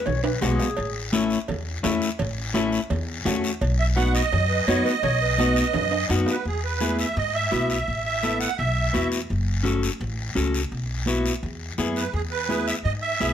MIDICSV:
0, 0, Header, 1, 6, 480
1, 0, Start_track
1, 0, Key_signature, 4, "major"
1, 0, Tempo, 355030
1, 1049, Time_signature, 4, 2, 24, 8
1, 18025, End_track
2, 0, Start_track
2, 0, Title_t, "Accordion"
2, 0, Program_c, 0, 21
2, 5123, Note_on_c, 0, 76, 93
2, 5233, Note_off_c, 0, 76, 0
2, 5354, Note_on_c, 0, 78, 91
2, 5584, Note_off_c, 0, 78, 0
2, 5598, Note_on_c, 0, 75, 111
2, 8189, Note_off_c, 0, 75, 0
2, 8515, Note_on_c, 0, 71, 74
2, 8726, Note_off_c, 0, 71, 0
2, 8748, Note_on_c, 0, 68, 75
2, 8962, Note_off_c, 0, 68, 0
2, 8984, Note_on_c, 0, 71, 81
2, 9424, Note_off_c, 0, 71, 0
2, 9456, Note_on_c, 0, 76, 85
2, 9676, Note_off_c, 0, 76, 0
2, 9700, Note_on_c, 0, 75, 99
2, 9933, Note_on_c, 0, 76, 100
2, 9942, Note_off_c, 0, 75, 0
2, 10387, Note_off_c, 0, 76, 0
2, 10408, Note_on_c, 0, 76, 81
2, 10864, Note_off_c, 0, 76, 0
2, 10884, Note_on_c, 0, 76, 97
2, 11334, Note_off_c, 0, 76, 0
2, 11360, Note_on_c, 0, 78, 97
2, 11588, Note_off_c, 0, 78, 0
2, 11599, Note_on_c, 0, 76, 93
2, 12274, Note_off_c, 0, 76, 0
2, 16173, Note_on_c, 0, 71, 77
2, 16395, Note_off_c, 0, 71, 0
2, 16407, Note_on_c, 0, 68, 80
2, 16516, Note_off_c, 0, 68, 0
2, 16646, Note_on_c, 0, 71, 96
2, 17126, Note_on_c, 0, 76, 95
2, 17143, Note_off_c, 0, 71, 0
2, 17235, Note_off_c, 0, 76, 0
2, 17361, Note_on_c, 0, 75, 106
2, 17471, Note_off_c, 0, 75, 0
2, 17597, Note_on_c, 0, 76, 103
2, 18025, Note_off_c, 0, 76, 0
2, 18025, End_track
3, 0, Start_track
3, 0, Title_t, "Clarinet"
3, 0, Program_c, 1, 71
3, 81, Note_on_c, 1, 73, 100
3, 311, Note_off_c, 1, 73, 0
3, 319, Note_on_c, 1, 71, 84
3, 546, Note_off_c, 1, 71, 0
3, 564, Note_on_c, 1, 68, 77
3, 1473, Note_off_c, 1, 68, 0
3, 6067, Note_on_c, 1, 71, 84
3, 6301, Note_off_c, 1, 71, 0
3, 6317, Note_on_c, 1, 73, 109
3, 6546, Note_off_c, 1, 73, 0
3, 6556, Note_on_c, 1, 71, 89
3, 6667, Note_off_c, 1, 71, 0
3, 6805, Note_on_c, 1, 73, 105
3, 7030, Note_off_c, 1, 73, 0
3, 7049, Note_on_c, 1, 71, 85
3, 7272, Note_off_c, 1, 71, 0
3, 7291, Note_on_c, 1, 71, 80
3, 8196, Note_off_c, 1, 71, 0
3, 18025, End_track
4, 0, Start_track
4, 0, Title_t, "Clean electric guitar"
4, 0, Program_c, 2, 27
4, 557, Note_on_c, 2, 56, 89
4, 567, Note_on_c, 2, 59, 74
4, 572, Note_on_c, 2, 66, 91
4, 899, Note_off_c, 2, 56, 0
4, 904, Note_off_c, 2, 59, 0
4, 907, Note_off_c, 2, 66, 0
4, 1520, Note_on_c, 2, 57, 90
4, 1528, Note_on_c, 2, 61, 74
4, 1534, Note_on_c, 2, 64, 89
4, 1861, Note_off_c, 2, 57, 0
4, 1866, Note_off_c, 2, 61, 0
4, 1866, Note_off_c, 2, 64, 0
4, 2477, Note_on_c, 2, 57, 93
4, 2477, Note_on_c, 2, 61, 79
4, 2481, Note_on_c, 2, 64, 97
4, 2819, Note_off_c, 2, 61, 0
4, 2820, Note_off_c, 2, 57, 0
4, 2822, Note_off_c, 2, 64, 0
4, 3434, Note_on_c, 2, 57, 86
4, 3435, Note_on_c, 2, 61, 76
4, 3444, Note_on_c, 2, 64, 97
4, 3777, Note_off_c, 2, 61, 0
4, 3778, Note_off_c, 2, 57, 0
4, 3783, Note_off_c, 2, 64, 0
4, 4394, Note_on_c, 2, 57, 78
4, 4400, Note_on_c, 2, 61, 77
4, 4410, Note_on_c, 2, 66, 89
4, 4738, Note_off_c, 2, 57, 0
4, 4740, Note_off_c, 2, 61, 0
4, 4746, Note_off_c, 2, 66, 0
4, 5353, Note_on_c, 2, 59, 74
4, 5362, Note_on_c, 2, 63, 69
4, 5363, Note_on_c, 2, 66, 87
4, 5698, Note_off_c, 2, 59, 0
4, 5699, Note_off_c, 2, 63, 0
4, 5702, Note_off_c, 2, 66, 0
4, 6330, Note_on_c, 2, 59, 94
4, 6338, Note_on_c, 2, 63, 85
4, 6343, Note_on_c, 2, 66, 97
4, 6666, Note_off_c, 2, 59, 0
4, 6669, Note_off_c, 2, 63, 0
4, 6672, Note_off_c, 2, 66, 0
4, 7276, Note_on_c, 2, 59, 93
4, 7285, Note_on_c, 2, 63, 79
4, 7297, Note_on_c, 2, 66, 93
4, 7618, Note_off_c, 2, 59, 0
4, 7624, Note_off_c, 2, 63, 0
4, 7627, Note_off_c, 2, 66, 0
4, 8013, Note_on_c, 2, 75, 63
4, 8234, Note_off_c, 2, 75, 0
4, 8247, Note_on_c, 2, 63, 83
4, 8250, Note_on_c, 2, 59, 83
4, 8256, Note_on_c, 2, 66, 88
4, 8259, Note_on_c, 2, 78, 67
4, 8584, Note_off_c, 2, 59, 0
4, 8586, Note_off_c, 2, 63, 0
4, 8588, Note_off_c, 2, 66, 0
4, 8696, Note_off_c, 2, 78, 0
4, 9199, Note_on_c, 2, 59, 68
4, 9209, Note_on_c, 2, 68, 81
4, 9213, Note_on_c, 2, 64, 65
4, 9540, Note_off_c, 2, 59, 0
4, 9545, Note_off_c, 2, 64, 0
4, 9546, Note_off_c, 2, 68, 0
4, 10156, Note_on_c, 2, 59, 69
4, 10165, Note_on_c, 2, 64, 62
4, 10165, Note_on_c, 2, 66, 74
4, 10500, Note_off_c, 2, 59, 0
4, 10502, Note_off_c, 2, 64, 0
4, 10504, Note_off_c, 2, 66, 0
4, 11125, Note_on_c, 2, 59, 69
4, 11133, Note_on_c, 2, 69, 75
4, 11136, Note_on_c, 2, 64, 56
4, 11464, Note_off_c, 2, 59, 0
4, 11467, Note_off_c, 2, 64, 0
4, 11469, Note_off_c, 2, 69, 0
4, 12074, Note_on_c, 2, 59, 67
4, 12082, Note_on_c, 2, 64, 63
4, 12090, Note_on_c, 2, 66, 80
4, 12420, Note_off_c, 2, 59, 0
4, 12421, Note_off_c, 2, 64, 0
4, 12427, Note_off_c, 2, 66, 0
4, 13023, Note_on_c, 2, 61, 85
4, 13033, Note_on_c, 2, 66, 74
4, 13040, Note_on_c, 2, 69, 88
4, 13376, Note_off_c, 2, 61, 0
4, 13377, Note_off_c, 2, 66, 0
4, 13378, Note_off_c, 2, 69, 0
4, 13998, Note_on_c, 2, 61, 80
4, 14005, Note_on_c, 2, 66, 71
4, 14014, Note_on_c, 2, 69, 81
4, 14341, Note_off_c, 2, 61, 0
4, 14345, Note_off_c, 2, 66, 0
4, 14348, Note_off_c, 2, 69, 0
4, 14971, Note_on_c, 2, 59, 85
4, 14972, Note_on_c, 2, 66, 84
4, 14976, Note_on_c, 2, 64, 74
4, 15306, Note_off_c, 2, 59, 0
4, 15308, Note_off_c, 2, 64, 0
4, 15309, Note_off_c, 2, 66, 0
4, 15930, Note_on_c, 2, 59, 77
4, 15930, Note_on_c, 2, 64, 72
4, 15938, Note_on_c, 2, 68, 91
4, 16265, Note_off_c, 2, 64, 0
4, 16267, Note_off_c, 2, 59, 0
4, 16271, Note_off_c, 2, 68, 0
4, 16886, Note_on_c, 2, 59, 60
4, 16889, Note_on_c, 2, 64, 61
4, 16899, Note_on_c, 2, 68, 76
4, 17224, Note_off_c, 2, 59, 0
4, 17225, Note_off_c, 2, 64, 0
4, 17231, Note_off_c, 2, 68, 0
4, 17852, Note_on_c, 2, 59, 68
4, 17858, Note_on_c, 2, 64, 61
4, 17867, Note_on_c, 2, 68, 72
4, 18025, Note_off_c, 2, 59, 0
4, 18025, Note_off_c, 2, 64, 0
4, 18025, Note_off_c, 2, 68, 0
4, 18025, End_track
5, 0, Start_track
5, 0, Title_t, "Upright bass"
5, 0, Program_c, 3, 32
5, 93, Note_on_c, 3, 35, 83
5, 475, Note_off_c, 3, 35, 0
5, 571, Note_on_c, 3, 35, 99
5, 762, Note_off_c, 3, 35, 0
5, 1058, Note_on_c, 3, 33, 90
5, 1823, Note_off_c, 3, 33, 0
5, 2011, Note_on_c, 3, 40, 94
5, 2395, Note_off_c, 3, 40, 0
5, 2495, Note_on_c, 3, 40, 99
5, 2685, Note_off_c, 3, 40, 0
5, 2968, Note_on_c, 3, 33, 98
5, 3737, Note_off_c, 3, 33, 0
5, 3923, Note_on_c, 3, 40, 97
5, 4310, Note_off_c, 3, 40, 0
5, 4400, Note_on_c, 3, 40, 102
5, 4596, Note_off_c, 3, 40, 0
5, 4887, Note_on_c, 3, 35, 102
5, 5656, Note_off_c, 3, 35, 0
5, 5848, Note_on_c, 3, 42, 100
5, 6233, Note_off_c, 3, 42, 0
5, 6322, Note_on_c, 3, 42, 89
5, 6517, Note_off_c, 3, 42, 0
5, 6798, Note_on_c, 3, 35, 100
5, 7571, Note_off_c, 3, 35, 0
5, 7764, Note_on_c, 3, 42, 94
5, 8150, Note_off_c, 3, 42, 0
5, 8239, Note_on_c, 3, 42, 102
5, 8435, Note_off_c, 3, 42, 0
5, 8726, Note_on_c, 3, 40, 85
5, 9495, Note_off_c, 3, 40, 0
5, 9689, Note_on_c, 3, 44, 104
5, 10074, Note_off_c, 3, 44, 0
5, 10170, Note_on_c, 3, 35, 85
5, 10554, Note_off_c, 3, 35, 0
5, 10654, Note_on_c, 3, 33, 84
5, 11421, Note_off_c, 3, 33, 0
5, 11611, Note_on_c, 3, 35, 96
5, 11995, Note_off_c, 3, 35, 0
5, 12093, Note_on_c, 3, 40, 87
5, 12477, Note_off_c, 3, 40, 0
5, 12577, Note_on_c, 3, 30, 93
5, 13343, Note_off_c, 3, 30, 0
5, 13527, Note_on_c, 3, 33, 100
5, 13913, Note_off_c, 3, 33, 0
5, 14005, Note_on_c, 3, 37, 83
5, 14392, Note_off_c, 3, 37, 0
5, 14490, Note_on_c, 3, 35, 89
5, 15258, Note_off_c, 3, 35, 0
5, 15451, Note_on_c, 3, 40, 91
5, 15835, Note_off_c, 3, 40, 0
5, 15927, Note_on_c, 3, 42, 83
5, 16313, Note_off_c, 3, 42, 0
5, 16404, Note_on_c, 3, 40, 86
5, 17174, Note_off_c, 3, 40, 0
5, 17372, Note_on_c, 3, 44, 91
5, 17755, Note_off_c, 3, 44, 0
5, 17855, Note_on_c, 3, 35, 82
5, 18025, Note_off_c, 3, 35, 0
5, 18025, End_track
6, 0, Start_track
6, 0, Title_t, "Drums"
6, 78, Note_on_c, 9, 56, 83
6, 78, Note_on_c, 9, 65, 68
6, 89, Note_on_c, 9, 63, 31
6, 89, Note_on_c, 9, 64, 81
6, 92, Note_on_c, 9, 74, 62
6, 213, Note_off_c, 9, 56, 0
6, 213, Note_off_c, 9, 65, 0
6, 224, Note_off_c, 9, 63, 0
6, 224, Note_off_c, 9, 64, 0
6, 227, Note_off_c, 9, 74, 0
6, 321, Note_on_c, 9, 65, 108
6, 456, Note_off_c, 9, 65, 0
6, 562, Note_on_c, 9, 73, 65
6, 566, Note_on_c, 9, 63, 84
6, 570, Note_on_c, 9, 56, 75
6, 570, Note_on_c, 9, 66, 81
6, 697, Note_off_c, 9, 73, 0
6, 701, Note_off_c, 9, 63, 0
6, 705, Note_off_c, 9, 56, 0
6, 705, Note_off_c, 9, 66, 0
6, 804, Note_on_c, 9, 66, 89
6, 806, Note_on_c, 9, 73, 75
6, 939, Note_off_c, 9, 66, 0
6, 942, Note_off_c, 9, 73, 0
6, 1036, Note_on_c, 9, 56, 99
6, 1046, Note_on_c, 9, 63, 35
6, 1051, Note_on_c, 9, 74, 71
6, 1171, Note_off_c, 9, 56, 0
6, 1181, Note_off_c, 9, 63, 0
6, 1186, Note_off_c, 9, 74, 0
6, 1522, Note_on_c, 9, 56, 63
6, 1526, Note_on_c, 9, 63, 77
6, 1527, Note_on_c, 9, 73, 68
6, 1657, Note_off_c, 9, 56, 0
6, 1661, Note_off_c, 9, 63, 0
6, 1662, Note_off_c, 9, 73, 0
6, 1762, Note_on_c, 9, 73, 72
6, 1897, Note_off_c, 9, 73, 0
6, 2004, Note_on_c, 9, 56, 81
6, 2009, Note_on_c, 9, 74, 60
6, 2016, Note_on_c, 9, 63, 28
6, 2016, Note_on_c, 9, 64, 75
6, 2140, Note_off_c, 9, 56, 0
6, 2144, Note_off_c, 9, 74, 0
6, 2151, Note_off_c, 9, 63, 0
6, 2151, Note_off_c, 9, 64, 0
6, 2488, Note_on_c, 9, 56, 74
6, 2488, Note_on_c, 9, 66, 78
6, 2488, Note_on_c, 9, 73, 67
6, 2490, Note_on_c, 9, 63, 88
6, 2623, Note_off_c, 9, 56, 0
6, 2623, Note_off_c, 9, 66, 0
6, 2623, Note_off_c, 9, 73, 0
6, 2625, Note_off_c, 9, 63, 0
6, 2729, Note_on_c, 9, 73, 65
6, 2864, Note_off_c, 9, 73, 0
6, 2963, Note_on_c, 9, 56, 98
6, 2967, Note_on_c, 9, 63, 36
6, 2967, Note_on_c, 9, 64, 68
6, 2967, Note_on_c, 9, 74, 77
6, 3098, Note_off_c, 9, 56, 0
6, 3102, Note_off_c, 9, 63, 0
6, 3102, Note_off_c, 9, 64, 0
6, 3102, Note_off_c, 9, 74, 0
6, 3439, Note_on_c, 9, 63, 82
6, 3443, Note_on_c, 9, 73, 63
6, 3444, Note_on_c, 9, 56, 69
6, 3574, Note_off_c, 9, 63, 0
6, 3578, Note_off_c, 9, 73, 0
6, 3579, Note_off_c, 9, 56, 0
6, 3683, Note_on_c, 9, 73, 67
6, 3818, Note_off_c, 9, 73, 0
6, 3923, Note_on_c, 9, 56, 84
6, 3927, Note_on_c, 9, 74, 65
6, 3930, Note_on_c, 9, 63, 35
6, 3930, Note_on_c, 9, 64, 85
6, 4058, Note_off_c, 9, 56, 0
6, 4062, Note_off_c, 9, 74, 0
6, 4065, Note_off_c, 9, 63, 0
6, 4065, Note_off_c, 9, 64, 0
6, 4400, Note_on_c, 9, 63, 80
6, 4405, Note_on_c, 9, 56, 71
6, 4405, Note_on_c, 9, 66, 70
6, 4412, Note_on_c, 9, 73, 69
6, 4536, Note_off_c, 9, 63, 0
6, 4541, Note_off_c, 9, 56, 0
6, 4541, Note_off_c, 9, 66, 0
6, 4548, Note_off_c, 9, 73, 0
6, 4651, Note_on_c, 9, 73, 74
6, 4787, Note_off_c, 9, 73, 0
6, 4887, Note_on_c, 9, 56, 94
6, 4890, Note_on_c, 9, 63, 37
6, 4899, Note_on_c, 9, 74, 69
6, 5022, Note_off_c, 9, 56, 0
6, 5025, Note_off_c, 9, 63, 0
6, 5034, Note_off_c, 9, 74, 0
6, 5363, Note_on_c, 9, 56, 70
6, 5365, Note_on_c, 9, 63, 81
6, 5371, Note_on_c, 9, 73, 66
6, 5498, Note_off_c, 9, 56, 0
6, 5500, Note_off_c, 9, 63, 0
6, 5506, Note_off_c, 9, 73, 0
6, 5607, Note_on_c, 9, 73, 68
6, 5742, Note_off_c, 9, 73, 0
6, 5845, Note_on_c, 9, 74, 59
6, 5847, Note_on_c, 9, 56, 80
6, 5855, Note_on_c, 9, 63, 33
6, 5855, Note_on_c, 9, 64, 79
6, 5980, Note_off_c, 9, 74, 0
6, 5982, Note_off_c, 9, 56, 0
6, 5990, Note_off_c, 9, 63, 0
6, 5990, Note_off_c, 9, 64, 0
6, 6325, Note_on_c, 9, 56, 70
6, 6327, Note_on_c, 9, 73, 65
6, 6328, Note_on_c, 9, 63, 88
6, 6461, Note_off_c, 9, 56, 0
6, 6462, Note_off_c, 9, 73, 0
6, 6464, Note_off_c, 9, 63, 0
6, 6572, Note_on_c, 9, 73, 70
6, 6707, Note_off_c, 9, 73, 0
6, 6803, Note_on_c, 9, 56, 96
6, 6805, Note_on_c, 9, 74, 73
6, 6811, Note_on_c, 9, 63, 36
6, 6811, Note_on_c, 9, 64, 74
6, 6938, Note_off_c, 9, 56, 0
6, 6940, Note_off_c, 9, 74, 0
6, 6946, Note_off_c, 9, 63, 0
6, 6946, Note_off_c, 9, 64, 0
6, 7275, Note_on_c, 9, 56, 70
6, 7285, Note_on_c, 9, 73, 64
6, 7288, Note_on_c, 9, 63, 87
6, 7410, Note_off_c, 9, 56, 0
6, 7420, Note_off_c, 9, 73, 0
6, 7423, Note_off_c, 9, 63, 0
6, 7521, Note_on_c, 9, 73, 69
6, 7656, Note_off_c, 9, 73, 0
6, 7753, Note_on_c, 9, 56, 86
6, 7753, Note_on_c, 9, 65, 91
6, 7763, Note_on_c, 9, 74, 72
6, 7774, Note_on_c, 9, 63, 33
6, 7774, Note_on_c, 9, 64, 80
6, 7888, Note_off_c, 9, 56, 0
6, 7888, Note_off_c, 9, 65, 0
6, 7898, Note_off_c, 9, 74, 0
6, 7909, Note_off_c, 9, 63, 0
6, 7909, Note_off_c, 9, 64, 0
6, 7991, Note_on_c, 9, 65, 89
6, 8126, Note_off_c, 9, 65, 0
6, 8229, Note_on_c, 9, 56, 72
6, 8248, Note_on_c, 9, 73, 65
6, 8249, Note_on_c, 9, 63, 77
6, 8364, Note_off_c, 9, 56, 0
6, 8383, Note_off_c, 9, 73, 0
6, 8384, Note_off_c, 9, 63, 0
6, 8468, Note_on_c, 9, 66, 82
6, 8488, Note_on_c, 9, 73, 62
6, 8603, Note_off_c, 9, 66, 0
6, 8623, Note_off_c, 9, 73, 0
6, 8728, Note_on_c, 9, 74, 66
6, 8732, Note_on_c, 9, 63, 34
6, 8863, Note_off_c, 9, 74, 0
6, 8867, Note_off_c, 9, 63, 0
6, 9201, Note_on_c, 9, 73, 64
6, 9211, Note_on_c, 9, 63, 80
6, 9336, Note_off_c, 9, 73, 0
6, 9347, Note_off_c, 9, 63, 0
6, 9446, Note_on_c, 9, 73, 71
6, 9581, Note_off_c, 9, 73, 0
6, 9684, Note_on_c, 9, 74, 59
6, 9688, Note_on_c, 9, 63, 32
6, 9819, Note_off_c, 9, 74, 0
6, 9823, Note_off_c, 9, 63, 0
6, 10155, Note_on_c, 9, 73, 65
6, 10167, Note_on_c, 9, 63, 81
6, 10290, Note_off_c, 9, 73, 0
6, 10302, Note_off_c, 9, 63, 0
6, 10408, Note_on_c, 9, 73, 59
6, 10543, Note_off_c, 9, 73, 0
6, 10649, Note_on_c, 9, 63, 36
6, 10650, Note_on_c, 9, 74, 65
6, 10784, Note_off_c, 9, 63, 0
6, 10785, Note_off_c, 9, 74, 0
6, 11122, Note_on_c, 9, 73, 60
6, 11126, Note_on_c, 9, 63, 76
6, 11257, Note_off_c, 9, 73, 0
6, 11261, Note_off_c, 9, 63, 0
6, 11365, Note_on_c, 9, 73, 68
6, 11500, Note_off_c, 9, 73, 0
6, 11603, Note_on_c, 9, 74, 64
6, 11615, Note_on_c, 9, 63, 31
6, 11738, Note_off_c, 9, 74, 0
6, 11750, Note_off_c, 9, 63, 0
6, 12088, Note_on_c, 9, 73, 57
6, 12093, Note_on_c, 9, 63, 78
6, 12223, Note_off_c, 9, 73, 0
6, 12229, Note_off_c, 9, 63, 0
6, 12327, Note_on_c, 9, 73, 68
6, 12462, Note_off_c, 9, 73, 0
6, 12570, Note_on_c, 9, 63, 32
6, 12575, Note_on_c, 9, 74, 66
6, 12705, Note_off_c, 9, 63, 0
6, 12711, Note_off_c, 9, 74, 0
6, 13039, Note_on_c, 9, 63, 83
6, 13053, Note_on_c, 9, 73, 62
6, 13174, Note_off_c, 9, 63, 0
6, 13188, Note_off_c, 9, 73, 0
6, 13294, Note_on_c, 9, 73, 72
6, 13429, Note_off_c, 9, 73, 0
6, 13520, Note_on_c, 9, 63, 33
6, 13539, Note_on_c, 9, 74, 62
6, 13655, Note_off_c, 9, 63, 0
6, 13674, Note_off_c, 9, 74, 0
6, 13996, Note_on_c, 9, 63, 78
6, 14013, Note_on_c, 9, 73, 64
6, 14131, Note_off_c, 9, 63, 0
6, 14149, Note_off_c, 9, 73, 0
6, 14257, Note_on_c, 9, 73, 69
6, 14392, Note_off_c, 9, 73, 0
6, 14479, Note_on_c, 9, 63, 31
6, 14496, Note_on_c, 9, 74, 68
6, 14614, Note_off_c, 9, 63, 0
6, 14631, Note_off_c, 9, 74, 0
6, 14952, Note_on_c, 9, 63, 78
6, 14971, Note_on_c, 9, 73, 64
6, 15087, Note_off_c, 9, 63, 0
6, 15106, Note_off_c, 9, 73, 0
6, 15218, Note_on_c, 9, 73, 70
6, 15354, Note_off_c, 9, 73, 0
6, 15447, Note_on_c, 9, 63, 29
6, 15453, Note_on_c, 9, 74, 60
6, 15582, Note_off_c, 9, 63, 0
6, 15588, Note_off_c, 9, 74, 0
6, 15925, Note_on_c, 9, 63, 78
6, 15926, Note_on_c, 9, 73, 62
6, 16061, Note_off_c, 9, 63, 0
6, 16061, Note_off_c, 9, 73, 0
6, 16173, Note_on_c, 9, 73, 64
6, 16308, Note_off_c, 9, 73, 0
6, 16407, Note_on_c, 9, 63, 32
6, 16410, Note_on_c, 9, 74, 75
6, 16542, Note_off_c, 9, 63, 0
6, 16546, Note_off_c, 9, 74, 0
6, 16884, Note_on_c, 9, 63, 79
6, 16894, Note_on_c, 9, 73, 64
6, 17019, Note_off_c, 9, 63, 0
6, 17030, Note_off_c, 9, 73, 0
6, 17139, Note_on_c, 9, 73, 70
6, 17274, Note_off_c, 9, 73, 0
6, 17375, Note_on_c, 9, 63, 32
6, 17384, Note_on_c, 9, 74, 65
6, 17510, Note_off_c, 9, 63, 0
6, 17520, Note_off_c, 9, 74, 0
6, 17851, Note_on_c, 9, 63, 82
6, 17855, Note_on_c, 9, 73, 58
6, 17986, Note_off_c, 9, 63, 0
6, 17990, Note_off_c, 9, 73, 0
6, 18025, End_track
0, 0, End_of_file